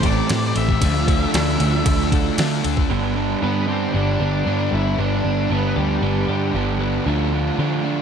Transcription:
Already playing: A1 A2 E3 A3 C4 E4 G4 C5 A5 E6
0.02 E3 A3 G4 D5, kick, ride
0.28 A2 E3 A3 C4, snare, ride
0.55 A1 E3 A3 G4 E5, ride
0.69 kick
0.81 D2 D3 F3 A3 D4 F4 D5, kick, ride
1.07 A3 D4, kick, ride
1.32 D2 D3 F3 A3 D4, snare, ride
1.59 D2 A3 D4, ride
1.84 D2 D3 A3 D4, kick, ride
2.11 A3 D4 A4, kick, ride
2.37 D3 A3 D4, snare, ride
2.63 D2 A3 D4 A4, ride
2.77 kick
2.89 G1 G2 D3 G3 B3 D4
3.16 G3 B3 D4
3.41 G2 D3 G3 B3 D4
3.67 D3 G3 B3 C4 D4 G4
3.93 G1 G2 D3 G3 B3 D4
4.20 G1 G3 B3 D4 G4
4.45 G2 D3 G3 B3 D4
4.70 G1 D3 G3 B3 E4
4.97 G1 G2 D3 G3 B3 D4
5.24 G1 G3 B3 D4
5.48 G1 G2 D3 G3 B3
5.53 D4
5.74 D2 D3 G3 B3 D4 G4
6.02 G1 G2 D3 G3 B3 D4
6.28 G2 G3 B3 D4 G4
6.53 G1 G2 D3 G3 B3 D4
6.79 D3 G3 B3
7.05 D2 D3 F3 A3 D4 F4
7.33 A3 D4 F4
7.57 D3 F3 A3 D4 F4
7.83 A3 D4 F4

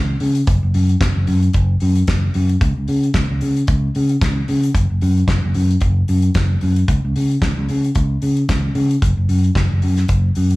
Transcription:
Already playing: C#2
0.20 C#3, open hi-hat
0.35 closed hi-hat
0.47 F#1, kick, closed hi-hat
0.63 F#1
0.74 F#2, open hi-hat
0.89 closed hi-hat
1.01 F#1, kick, snare, closed hi-hat
1.16 F#1
1.27 F#2, open hi-hat
1.42 closed hi-hat
1.53 F#1, kick, closed hi-hat
1.80 F#2, open hi-hat
1.95 closed hi-hat
2.07 F#1, kick, snare, closed hi-hat
2.34 F#2, open hi-hat
2.49 closed hi-hat
2.61 C#2, kick, closed hi-hat
2.77 C#2
2.88 C#3, open hi-hat
3.03 closed hi-hat
3.14 C#2, kick, snare, closed hi-hat
3.30 C#2
3.41 C#3, open hi-hat
3.57 closed hi-hat
3.67 C#2, kick, closed hi-hat
3.95 C#3, open hi-hat
4.09 closed hi-hat
4.21 C#2, kick, snare, closed hi-hat
4.48 C#3, open hi-hat
4.63 closed hi-hat
4.75 F#1, kick, closed hi-hat
4.90 F#1
5.01 F#2, open hi-hat
5.18 closed hi-hat
5.28 F#1, kick, snare, closed hi-hat
5.44 F#1
5.54 F#2, open hi-hat
5.71 closed hi-hat
5.80 F#1, kick, closed hi-hat
6.08 F#2, open hi-hat
6.22 closed hi-hat
6.34 F#1, kick, snare, closed hi-hat
6.61 F#2, open hi-hat
6.76 closed hi-hat
6.88 C#2, kick, closed hi-hat
7.05 C#2
7.16 C#3, open hi-hat
7.31 closed hi-hat
7.42 C#2, kick, snare, closed hi-hat
7.58 C#2
7.69 C#3, open hi-hat
7.84 closed hi-hat
7.95 C#2, kick, closed hi-hat
8.22 C#3, open hi-hat
8.37 closed hi-hat
8.49 C#2, kick, snare, closed hi-hat
8.75 C#3, open hi-hat
8.91 closed hi-hat
9.02 F#1, kick, closed hi-hat
9.17 F#1
9.29 F#2, open hi-hat
9.44 closed hi-hat
9.55 F#1, kick, snare, closed hi-hat
9.72 F#1
9.82 F#2, open hi-hat
9.97 snare, closed hi-hat
10.08 F#1, kick, closed hi-hat
10.35 F#2, open hi-hat
10.50 closed hi-hat

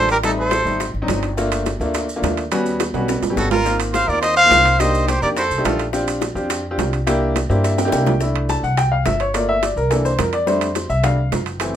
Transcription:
Already playing: A1 E3 G3 A3 D4
0.09 G4 A#4, high timbale, maracas
0.23 G3 A3 C4 D#4 A4, high bongo, high timbale, maracas
0.39 A4 C5
0.51 high bongo, high timbale, low timbale, maracas
0.65 G#1 G3 A3 C4 D#4, high bongo, maracas
0.80 high bongo, high timbale, maracas
0.94 G#1, high bongo
1.02 F#3 C4 D4 D#4
1.08 G1, high bongo, low bongo, high timbale, low timbale, maracas
1.23 high bongo, high timbale, maracas
1.37 A3 A#3 D4 F4, high bongo, maracas
1.52 high timbale, maracas
1.66 high bongo, high timbale, low timbale, maracas
1.80 D2 A3 A#3 D4 F4, maracas
1.94 high bongo, high timbale, maracas
2.09 maracas
2.16 A3 A#3 D4 F4
2.22 D#2, high bongo, low bongo, high timbale, low timbale, maracas
2.37 high timbale, maracas
2.52 G3 B3 C#4 F#4, high bongo, high timbale, maracas
2.66 maracas
2.80 high bongo, high timbale, low timbale, maracas
2.94 B1 G3 B3 C#4 F#4, high bongo, high timbale, maracas
3.08 high bongo, high timbale, maracas
3.22 A1, high bongo, low timbale, maracas
3.30 G3 B3 C#4 G4
3.36 G#1 F#4 A4, high bongo, low bongo, maracas
3.51 F4 A#4, high bongo, low timbale, maracas
3.65 A#3 C4 D#4 F4, high bongo, maracas
3.80 high timbale, maracas
3.93 C5 F5, high bongo, high timbale, low timbale, maracas
4.08 D#2 A#3 C4 D#4 F4 A#4 D5, maracas
4.21 C5 D#5, high bongo, high timbale, maracas
4.36 C5 F5
4.44 A#3 C4 D#4 F4
4.51 C2, high bongo, low bongo, high timbale, low timbale, maracas
4.65 high timbale, maracas
4.78 A#3 D4 D#4 G4 C5 D#5, high bongo, high timbale, maracas
4.95 maracas
5.07 G4 C5, high bongo, high timbale, low timbale, maracas
5.21 F2 A#3 D4 D#4 G4 A#4 D5, high bongo, maracas
5.36 E4 F#4 A4 C5, high bongo, high timbale, maracas
5.51 C2, high bongo, maracas
5.58 A3 D4 D#4 G4
5.65 A#1 F4 A4, high bongo, low bongo, high timbale, low timbale, maracas
5.79 high bongo, high timbale, maracas
5.93 C4 D4 F4 G4, high bongo, maracas
6.08 high timbale, maracas
6.21 high bongo, high timbale, low timbale, maracas
6.35 F2 C4 D4 F4 G4, maracas
6.50 high bongo, high timbale, maracas
6.71 C4 D4 F4 G4
6.78 C2, high bongo, low bongo, high timbale, low timbale, maracas
6.93 high timbale, maracas
7.07 A#3 D4 E4 G4, high bongo, high timbale, maracas
7.36 high bongo, high timbale, low timbale, maracas
7.49 G2 A#3 D4 E4 G4 C5, high bongo, maracas
7.64 E5, high bongo, high timbale, maracas
7.78 G5, high bongo, high timbale, maracas
7.85 A#3 D4 E4 G4, high timbale
7.92 C2 G5, high bongo, maracas
8.06 low bongo, low timbale, maracas
8.20 A3 D4 E4, high bongo, maracas
8.36 high timbale
8.49 A5, high bongo, high timbale, low timbale, maracas
8.63 C2 F#5, maracas
8.77 G5, high bongo, high timbale, maracas
8.92 F5
9.06 G1 E5, high bongo, low bongo, high timbale, low timbale, maracas
9.20 C#5, high timbale, maracas
9.34 A3 A#3 F4 D5, high bongo, high timbale, maracas
9.49 E5
9.63 D5, high bongo, high timbale, low timbale, maracas
9.76 C2 A#4, high bongo, maracas
9.90 E3 A#3 D4 A4, high bongo, high timbale, maracas
10.05 C5, high bongo, maracas
10.19 F2 A#4, high bongo, low bongo, high timbale, low timbale, maracas
10.33 D5, high bongo, high timbale, maracas
10.46 G3 A3 D4 C5, high bongo, maracas
10.61 high timbale, maracas
10.75 high bongo, high timbale, low timbale, maracas
10.89 C2 E5, maracas
11.03 G3 A3 D4 F5, high bongo, high timbale, maracas
11.32 F#1, high bongo, low bongo, high timbale, low timbale, maracas
11.46 high timbale, maracas
11.60 E3 A3 C4, high bongo, high timbale, maracas

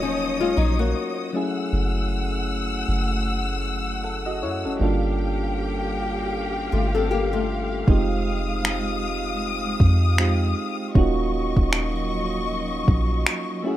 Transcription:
Already playing: D#1 F#3 A#3 C#4 D#4 F4 C#5 D#5 D#6
0.02 F3 C#4
0.40 G#3 F4
0.57 A#1 F#3 D#4
0.79 A#3 F#4
1.33 F#3 A3 C#4 E4 G#4 F#5 E6
1.73 F#1
2.89 F#1
4.04 A4 F#5
4.26 F#4 D#5
4.42 F#2 E4 C#5
4.64 F#1 C#4 A4
4.79 G1 G3 A#3 D4 F4 G4 A4 F5 G5
6.72 G1 A3 F4
6.95 C4 A4
7.11 A#3 G4
7.33 A3 F4
7.87 F1 G#3 C4 D#4 F4 G4 D#6, kick
8.65 finger snap
9.80 F2, kick
10.18 G#3 C4 D#4 F4 G4, finger snap
10.95 D#1 F#3 A#3 C#4 D#4 F4 F#4 D#5 C#6, kick
11.57 D#1, kick
11.73 finger snap
12.88 A#1, kick
13.27 finger snap
13.64 A3 C#4 E4 F#4 G#4 E5 F#5

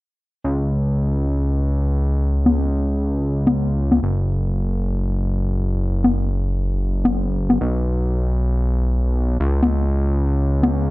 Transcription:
0.44 C#2
2.46 high conga
3.47 high conga
3.92 high conga
4.03 F#1
6.04 high conga
7.05 high conga
7.50 high conga
7.61 B1
9.40 C#2
9.63 high conga
10.63 high conga

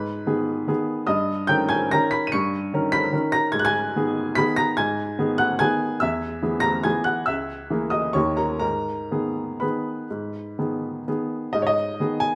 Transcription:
Already playing: G#2 B4 B5
0.26 D#3 B3 G#4
0.67 D#3 B3 G#4
1.07 G2 D#5 D#6
1.47 D#3 C#4 A#4 G5 G6
1.69 G#5 G#6
1.91 D#3 C#4 A#4 A#5 A#6
2.11 B5 B6
2.27 D#7
2.32 G2 C#6 C#7
2.73 D#3 C#4 A#4
2.92 B5 B6
3.12 D#3 C#4 A#4
3.32 A#5 A#6
3.52 G#2 G#6
3.59 F#6
3.65 G#5 G#6
3.96 D#3 B3 G#4
4.35 D#3 B3 G#4 B5 B6
4.56 A#5 A#6
4.77 G#2 G#5 G#6
5.19 D#3 B3 G#4
5.38 F#5 F#6
5.59 D#3 B3 G#4 G#5 G#6
6.00 E2 E5 E6
6.42 E3 B3 G#4
6.60 A#5 A#6
6.84 E3 B3 G#4 G#5 G#6
7.04 F#5 F#6
7.26 C#2 E5 E6
7.70 E3 A#3 G#4
7.90 D#5 D#6
8.13 D#2 D#3 A#3 G4 C#5 C#6
8.37 A#4 A#5
8.60 G#2 A#4 A#5
9.12 D#3 B3 G#4
9.60 D#3 B3 G#4 B4 B5
10.11 G#2
10.59 D#3 B3 G#4
11.08 D#3 B3 G#4
11.53 G#2 D#5
11.62 C#5
11.67 D#5
12.00 D#3 B3 G#4
12.20 G#5

